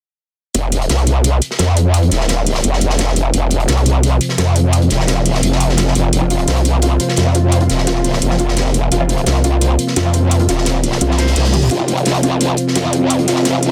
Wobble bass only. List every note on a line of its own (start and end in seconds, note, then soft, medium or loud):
0.55 0.88 F1 medium
0.90 1.40 C2 medium
1.59 2.10 F2 medium
2.12 2.62 D#1 loud
2.64 3.32 F1 medium
3.34 3.67 F1 medium
3.69 4.19 C2 loud
4.38 4.89 F2 medium
4.91 5.42 D#1 medium
5.43 5.94 F1 medium
5.95 6.11 F1 medium
6.13 6.46 F1 loud
6.48 6.99 C2 loud
7.17 7.68 F2 loud
7.70 8.21 D#1 medium
8.22 8.90 F1 loud
8.92 9.25 F1 loud
9.27 9.78 C2 medium
9.97 10.47 F2 loud
10.49 11.00 D#1 loud
11.01 11.35 C2 medium
11.36 11.69 C2 medium
11.71 12.04 F1 medium
12.06 12.57 C2 loud
12.76 13.27 F2 loud
13.28 13.72 D#1 medium